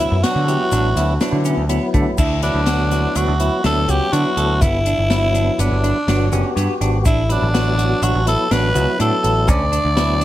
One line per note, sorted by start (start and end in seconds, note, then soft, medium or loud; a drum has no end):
0.00 0.21 F#3 medium
0.00 0.21 B3 medium
0.00 0.16 E4 medium
0.00 0.21 E4 medium
0.00 0.25 E4 medium
0.11 0.22 F#2 medium
0.23 0.45 F#3 medium
0.23 0.45 B3 medium
0.23 0.46 D4 medium
0.23 1.45 F#4 medium
0.23 0.40 F#4 medium
0.23 snare loud
0.23 closed hi-hat medium
0.35 0.56 D3 medium
0.47 1.14 F#3 medium
0.47 1.14 B3 medium
0.47 1.14 E4 medium
0.47 0.65 G4 medium
0.47 closed hi-hat medium
0.47 shaker soft
0.72 0.92 A1 loud
0.72 0.89 D4 medium
0.72 closed hi-hat medium
0.72 shaker medium
0.96 1.16 D2 medium
0.96 1.13 E4 medium
0.96 snare soft
0.96 closed hi-hat medium
0.96 shaker soft
1.21 1.65 F#3 medium
1.21 1.65 B3 medium
1.21 1.38 D4 medium
1.21 1.65 E4 loud
1.21 snare loud
1.21 closed hi-hat medium
1.21 shaker soft
1.32 1.53 D3 medium
1.45 1.62 C#4 medium
1.45 closed hi-hat medium
1.45 shaker soft
1.57 1.77 D2 medium
1.69 2.18 F#3 medium
1.69 2.18 B3 medium
1.69 1.86 B3 medium
1.69 2.18 E4 loud
1.69 closed hi-hat medium
1.94 2.04 D3 medium
1.94 2.11 A3 medium
1.94 kick medium
1.94 closed hi-hat medium
2.18 2.48 D2 medium
2.18 2.35 D4 medium
2.18 2.41 E4 medium
2.18 kick loud
2.18 crash medium
2.18 shaker medium
2.42 2.65 F#3 medium
2.42 2.65 B3 medium
2.42 3.18 D4 medium
2.42 2.59 E4 medium
2.42 2.65 E4 medium
2.42 closed hi-hat medium
2.42 shaker soft
2.54 3.05 D2 medium
2.66 2.89 F#3 medium
2.66 2.89 B3 medium
2.66 2.84 F#4 medium
2.66 2.89 F#4 medium
2.66 snare loud
2.66 closed hi-hat medium
2.66 shaker soft
2.91 3.35 F#3 medium
2.91 3.35 B3 medium
2.91 3.35 E4 medium
2.91 3.08 F#4 medium
2.91 closed hi-hat medium
2.91 shaker soft
3.16 3.26 D2 medium
3.16 3.32 D4 medium
3.16 3.65 F#4 medium
3.16 closed hi-hat medium
3.16 shaker medium
3.28 3.48 D2 medium
3.39 3.62 F#3 medium
3.39 3.62 B3 medium
3.39 3.62 E4 medium
3.39 3.57 E4 medium
3.39 closed hi-hat medium
3.64 3.84 D2 medium
3.64 3.86 F#3 medium
3.64 3.86 B3 medium
3.64 3.81 D4 medium
3.64 3.86 E4 medium
3.64 3.91 A4 loud
3.64 snare loud
3.64 closed hi-hat medium
3.88 3.98 C#2 medium
3.88 4.10 F#3 medium
3.88 4.10 B3 medium
3.88 4.10 C#4 medium
3.88 4.05 F#4 medium
3.88 4.14 G4 medium
3.88 closed hi-hat medium
3.88 shaker soft
4.12 4.23 D3 medium
4.12 4.61 F#3 medium
4.12 4.61 B3 medium
4.12 4.30 D4 medium
4.12 4.62 E4 medium
4.12 4.63 F#4 loud
4.12 closed hi-hat medium
4.12 shaker soft
4.37 4.63 D2 medium
4.37 4.54 A4 medium
4.37 closed hi-hat medium
4.62 4.92 G1 medium
4.62 4.78 B3 medium
4.62 5.61 E4 medium
4.62 kick medium
4.62 closed hi-hat medium
4.62 shaker medium
4.86 5.03 D4 medium
4.86 closed hi-hat medium
4.86 shaker soft
4.98 5.48 G1 medium
5.10 5.98 F#3 medium
5.10 5.98 B3 medium
5.10 5.98 E4 medium
5.10 5.27 E4 medium
5.10 snare loud
5.10 closed hi-hat medium
5.10 shaker soft
5.35 5.51 D4 medium
5.35 closed hi-hat medium
5.35 shaker soft
5.58 5.69 G1 medium
5.58 5.76 B3 medium
5.58 6.57 D4 medium
5.58 closed hi-hat medium
5.58 shaker medium
5.70 5.91 G1 medium
5.84 6.00 D4 medium
5.84 closed hi-hat medium
6.07 6.28 G1 medium
6.07 6.30 F#3 medium
6.07 6.30 B3 medium
6.07 6.25 D4 medium
6.07 6.30 F#4 medium
6.07 snare loud
6.07 closed hi-hat medium
6.32 6.42 F#1 loud
6.32 7.06 B3 medium
6.32 6.49 C#4 medium
6.32 7.05 F#4 medium
6.32 7.05 G4 medium
6.32 closed hi-hat medium
6.32 shaker soft
6.56 6.66 G2 medium
6.56 6.73 B3 medium
6.56 closed hi-hat medium
6.56 shaker soft
6.81 7.05 G#1 medium
6.81 6.98 D4 medium
6.81 closed hi-hat medium
7.05 7.36 A1 loud
7.05 7.22 D4 medium
7.05 7.33 E4 medium
7.05 kick loud
7.05 closed hi-hat medium
7.05 shaker medium
7.29 7.51 F#3 medium
7.29 7.52 B3 medium
7.29 8.05 D4 medium
7.29 7.46 E4 medium
7.29 7.52 E4 medium
7.29 closed hi-hat medium
7.29 shaker soft
7.42 7.92 A1 medium
7.54 7.76 F#3 medium
7.54 7.76 B3 medium
7.54 7.76 E4 medium
7.54 7.71 F#4 medium
7.54 snare loud
7.54 closed hi-hat medium
7.54 shaker soft
7.78 8.22 F#3 medium
7.78 8.22 B3 medium
7.78 7.95 F#4 medium
7.78 8.22 F#4 medium
7.78 closed hi-hat medium
7.78 shaker soft
8.02 8.12 A1 medium
8.02 8.19 D4 medium
8.02 8.27 F#4 medium
8.02 closed hi-hat medium
8.02 shaker medium
8.14 8.35 A1 medium
8.26 8.48 F#3 medium
8.26 8.49 B3 medium
8.26 8.49 E4 medium
8.26 8.44 E4 medium
8.26 8.54 A4 medium
8.26 snare soft
8.26 closed hi-hat medium
8.50 8.71 A1 medium
8.50 8.73 F#3 medium
8.50 8.73 B3 medium
8.50 8.68 D4 medium
8.50 8.73 F#4 medium
8.50 9.00 B4 loud
8.50 snare loud
8.50 closed hi-hat medium
8.75 8.85 C#2 medium
8.75 8.97 F#3 medium
8.75 8.97 B3 medium
8.75 8.97 E4 medium
8.75 8.92 F#4 medium
8.75 closed hi-hat medium
8.75 shaker soft
8.99 9.10 A2 medium
8.99 9.48 F#3 medium
8.99 9.48 B3 medium
8.99 9.16 D4 medium
8.99 9.48 E4 loud
8.99 9.51 A4 medium
8.99 closed hi-hat medium
8.99 shaker soft
9.23 9.48 A1 medium
9.23 9.40 A4 medium
9.23 closed hi-hat medium
9.48 9.78 D2 loud
9.48 9.65 C#4 medium
9.48 10.24 D5 loud
9.48 kick loud
9.48 closed hi-hat medium
9.48 shaker medium
9.72 9.89 D4 medium
9.72 closed hi-hat medium
9.72 shaker soft
9.84 10.24 D2 medium
9.96 10.24 F#3 medium
9.96 10.24 B3 medium
9.96 10.13 E4 medium
9.96 10.24 E4 medium
9.96 snare loud
9.96 closed hi-hat medium
10.21 10.24 D4 medium
10.21 closed hi-hat medium